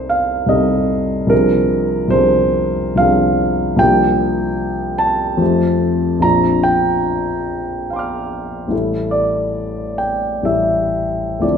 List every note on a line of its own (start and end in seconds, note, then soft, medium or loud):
0.00 0.45 C2 soft
0.00 0.46 G3 soft
0.00 0.46 C4 soft
0.00 0.46 D#4 soft
0.00 0.47 A4 soft
0.00 0.11 C5 medium
0.09 0.50 F5 medium
0.46 1.25 C2 soft
0.46 1.27 G3 soft
0.46 1.27 C4 soft
0.46 1.27 D#4 soft
0.46 1.28 A4 soft
0.46 1.30 D#5 medium
1.27 2.07 C2 soft
1.27 2.07 F3 soft
1.27 2.08 C4 soft
1.27 2.08 D4 soft
1.27 2.08 G#4 soft
1.27 2.11 A#4 medium
2.08 2.94 C2 soft
2.08 2.95 F3 soft
2.08 2.95 C4 soft
2.08 2.95 D4 soft
2.08 2.96 G#4 soft
2.08 2.98 C5 medium
2.95 3.75 C2 soft
2.95 3.76 F3 soft
2.95 3.77 C4 soft
2.95 3.77 D4 soft
2.95 3.78 G#4 soft
2.95 3.79 F5 medium
3.76 5.35 C2 soft
3.76 5.35 F3 soft
3.76 5.35 A#3 soft
3.76 5.36 D4 soft
3.76 5.36 G4 soft
3.76 4.99 G5 medium
4.98 6.23 A5 medium
5.37 6.20 F2 soft
5.37 6.19 F3 soft
5.37 6.21 A3 soft
5.37 6.20 C4 soft
5.37 6.21 G4 soft
6.20 8.66 A#1 soft
6.20 8.66 F3 soft
6.20 8.67 C4 soft
6.20 8.67 D4 soft
6.20 8.68 F4 soft
6.20 6.65 A#5 medium
6.63 7.88 G5 medium
7.90 8.69 F5 soft
7.90 8.70 C6 soft
7.96 8.71 D6 soft
7.96 8.73 F6 soft
8.68 10.40 A1 soft
8.68 10.41 G3 soft
8.68 10.41 A3 soft
8.68 10.41 E4 soft
8.72 10.42 A4 soft
9.11 9.99 D5 medium
9.98 10.45 G5 medium
10.43 11.38 A1 soft
10.43 11.38 G3 soft
10.43 11.39 A3 soft
10.43 11.39 E4 soft
10.43 11.40 A4 soft
10.43 11.42 E5 medium
11.39 11.58 D2 soft
11.39 11.58 F3 soft
11.39 11.58 C4 soft
11.39 11.58 E4 soft
11.39 11.58 A4 soft
11.39 11.58 D5 soft